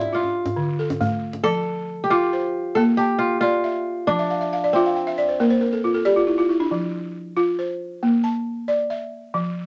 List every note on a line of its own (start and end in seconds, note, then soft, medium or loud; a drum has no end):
0.00 0.49 D4 medium
0.00 0.20 E4 medium
0.00 0.82 G4 medium
0.00 0.13 D5 medium
0.00 0.34 G5 medium
0.00 djembe slap soft
0.13 0.79 F4 medium
0.13 1.66 F4 medium
0.23 djembe tone soft
0.46 djembe slap medium
0.46 djembe bass soft
0.56 1.00 D3 medium
0.56 djembe slap soft
0.68 djembe slap soft
0.79 1.45 A4 medium
0.90 djembe slap medium
0.90 djembe tone medium
1.01 1.44 A3 medium
1.01 djembe slap soft
1.01 djembe bass medium
1.33 djembe slap medium
1.44 1.88 F3 medium
1.44 2.75 A4 loud
2.04 2.97 G4 medium
2.10 3.18 F4 medium
2.10 2.55 F4 loud
2.33 2.99 C5 medium
2.75 3.20 A#3 medium
2.75 2.81 A4 medium
2.97 4.38 G4 medium
2.97 3.64 A5 medium
3.19 3.40 F4 medium
3.41 4.92 F4 medium
3.41 3.86 D5 medium
3.64 4.18 E5 medium
4.07 4.52 F3 medium
4.07 5.75 D4 medium
4.19 4.39 E5 medium
4.30 4.50 F5 medium
4.41 4.61 E5 medium
4.53 4.73 F5 medium
4.64 4.84 D5 medium
4.73 6.53 C4 medium
4.73 5.19 F4 medium
4.73 4.95 E5 medium
4.86 5.06 F5 medium
4.96 5.16 G5 medium
5.07 5.27 E5 medium
5.18 5.38 D5 medium
5.29 5.49 C5 medium
5.40 5.84 A#3 medium
5.40 5.60 A#4 medium
5.50 5.71 C5 medium
5.61 5.82 A#4 medium
5.73 5.93 A4 medium
5.84 6.04 F4 medium
5.94 6.15 A4 medium
6.05 6.26 G4 medium
6.05 6.49 D5 medium
6.16 6.37 F4 medium
6.27 6.47 E4 medium
6.38 6.58 F4 medium
6.49 6.70 E4 medium
6.60 6.80 D4 medium
6.71 7.15 F3 medium
7.37 7.81 F4 medium
7.59 8.25 C5 medium
8.03 8.47 A#3 medium
8.24 8.90 A5 medium
8.68 9.12 D5 medium
8.90 9.56 E5 medium
9.34 9.66 F3 medium